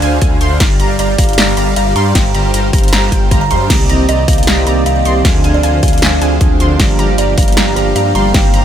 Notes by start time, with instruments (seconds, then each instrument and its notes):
0.02 detuned saw bass D2, supersaw synth D3 D4 C5 F5 G#5, synth pluck G#5, closed hi-hat
0.21 detuned saw bass D2, supersaw synth D3 D4 C5 F5 G#5, synth pluck G#5, kick, closed hi-hat
0.41 detuned saw bass D2, supersaw synth D3 D4 C5 F5 C6, synth pluck C6, closed hi-hat
0.60 detuned saw bass G1, supersaw synth G3 G4 D5 F5 A#5, synth pluck A#5, kick, snare, closed hi-hat, crash
0.80 detuned saw bass G1, supersaw synth G3 G4 D5 F5 A#5, synth pluck A#5, closed hi-hat
0.99 detuned saw bass G1, supersaw synth G3 G4 D5 F5 A#5, kalimba D5, synth pluck A#5, closed hi-hat
1.18 detuned saw bass G1, supersaw synth G3 G4 D5 F5, kalimba F5, synth pluck A#5, kick, open hi-hat
1.24 closed hi-hat
1.29 kalimba F5, closed hi-hat
1.33 closed hi-hat
1.38 detuned saw bass G1, supersaw synth G3 G4 D5 F5 A#5, synth pluck A#5, snare, closed hi-hat, crash
1.57 detuned saw bass G1, supersaw synth G3 G4 D5 F5 A#5, synth pluck A#5, closed hi-hat
1.76 detuned saw bass G1, supersaw synth G3 G4 D5 F5 A#5, kalimba F5, synth pluck A#5, closed hi-hat
1.87 kalimba F5
1.96 detuned saw bass G2, supersaw synth G3 G4 D5 F5 C6, kalimba A#5, synth pluck C6, closed hi-hat
2.15 detuned saw bass G1, supersaw synth G3 G4 C5 F5 A#5, kalimba G5, synth pluck A#5, kick, snare, closed hi-hat, crash
2.35 detuned saw bass G1, supersaw synth G3 G4 C5 F5 A#5, synth pluck A#5, closed hi-hat
2.54 detuned saw bass G1, supersaw synth G3 G4 C5 F5 A#5, synth pluck A#5, closed hi-hat
2.73 detuned saw bass G1, supersaw synth G3 G4 C5 F5 A#5, synth pluck A#5, kick, open hi-hat
2.78 closed hi-hat
2.84 closed hi-hat
2.88 closed hi-hat
2.93 detuned saw bass G1, supersaw synth G3 G4 C5 F5 A#5, kalimba A#5, synth pluck A#5, snare, closed hi-hat, crash
3.12 detuned saw bass G1, supersaw synth G3 G4 C5 F5 G5, synth pluck G5, kick, closed hi-hat
3.31 detuned saw bass G1, supersaw synth G3 G4 C5 F5 A#5, synth pluck A#5, kick, closed hi-hat
3.41 kalimba A#5
3.51 detuned saw bass G2, supersaw synth G3 G4 C5 F5 C6, kalimba A#5, synth pluck C6, closed hi-hat
3.68 detuned saw bass C2, tine electric piano D#3 A#3 C4, supersaw synth C4 G4 D5 D#5 A#5, synth pluck A#5, kick, snare, closed hi-hat, crash
3.72 tine electric piano G4
3.89 detuned saw bass C2, supersaw synth C4 G4 D5 D#5 A#5, synth pluck A#5, closed hi-hat
4.09 detuned saw bass C2, supersaw synth C4 G4 D5 D#5 A#5, kalimba D#5, synth pluck A#5, closed hi-hat
4.28 detuned saw bass C2, supersaw synth C4 G4 D5 D#5 A#5, kalimba F5, synth pluck A#5, kick, open hi-hat
4.33 closed hi-hat
4.38 kalimba F5, closed hi-hat
4.43 closed hi-hat
4.47 detuned saw bass C2, supersaw synth C4 G4 D5 D#5 A#5, synth pluck A#5, snare, closed hi-hat, crash
4.65 detuned saw bass C2, tine electric piano D#3 A#3 C4 G4, supersaw synth C4 G4 D5 D#5 A#5, synth pluck A#5, closed hi-hat
4.86 detuned saw bass C2, supersaw synth C4 G4 D5 D#5 A#5, kalimba F5, synth pluck A#5, closed hi-hat
4.96 kalimba F5
5.05 detuned saw bass C2, supersaw synth C4 G4 D5 D#5 C6, synth pluck C6, closed hi-hat
5.23 detuned saw bass D2, supersaw synth D3 D4 C5 F5 G#5, tine electric piano F3 C4 D4, synth pluck G#5, kick, snare, closed hi-hat, crash
5.27 tine electric piano G#4
5.44 detuned saw bass D2, supersaw synth D3 D4 C5 F5 G#5, synth pluck G#5, closed hi-hat
5.54 kalimba D5
5.63 detuned saw bass D2, supersaw synth D3 D4 C5 F5 G#5, kalimba F5, synth pluck G#5, closed hi-hat
5.83 detuned saw bass D2, supersaw synth D3 D4 C5 F5, kalimba F5, synth pluck G#5, kick, open hi-hat
5.88 closed hi-hat
5.93 kalimba F5, closed hi-hat
5.98 closed hi-hat
6.02 detuned saw bass D2, supersaw synth D3 D4 C5 F5 G#5, synth pluck G#5, snare, closed hi-hat, crash
6.21 detuned saw bass D2, supersaw synth D3 D4 C5 F5 G#5, tine electric piano F3 C4 D4 G#4, synth pluck G#5, closed hi-hat
6.40 detuned saw bass D2, supersaw synth D3 D4 C5 F5 G#5, tine electric piano F3 C4 D4 G#4, synth pluck G#5, kick, closed hi-hat
6.60 detuned saw bass D2, supersaw synth D3 D4 C5 F5 C6, synth pluck C6, closed hi-hat
6.78 detuned saw bass G1, tine electric piano F3 A#3 D4 G4, supersaw synth G3 G4 F5 A#5, synth pluck A#5, kick, snare, closed hi-hat, crash
6.99 detuned saw bass G1, supersaw synth G3 G4 D5 F5 A#5, synth pluck A#5, closed hi-hat
7.18 detuned saw bass G1, supersaw synth G3 G4 D5 F5 A#5, kalimba D5, synth pluck A#5, closed hi-hat
7.38 detuned saw bass G1, supersaw synth G3 G4 F5 A#5, kalimba F5, synth pluck A#5, kick, open hi-hat
7.43 closed hi-hat
7.48 kalimba F5, closed hi-hat
7.52 closed hi-hat
7.57 detuned saw bass G1, supersaw synth G3 G4 D5 F5 A#5, synth pluck A#5, snare, closed hi-hat, crash
7.74 detuned saw bass G1, tine electric piano F3 A#3 D4, supersaw synth G3 G4 D5 F5 A#5, synth pluck A#5, closed hi-hat
7.78 tine electric piano G4
7.96 detuned saw bass G2, supersaw synth G3 G4 D5 F5 A#5, kalimba F5, synth pluck A#5, closed hi-hat
8.06 kalimba F5
8.15 detuned saw bass G1, supersaw synth G3 G4 D5 F5 C6, kalimba A#5, synth pluck C6, closed hi-hat
8.32 detuned saw bass G1, tine electric piano D#3 A#3 C4 G4, supersaw synth G3 G4, kalimba G5, synth pluck A#5, kick, snare, closed hi-hat, crash
8.54 detuned saw bass G1, supersaw synth G3 G4 C5 F5 A#5, synth pluck A#5, closed hi-hat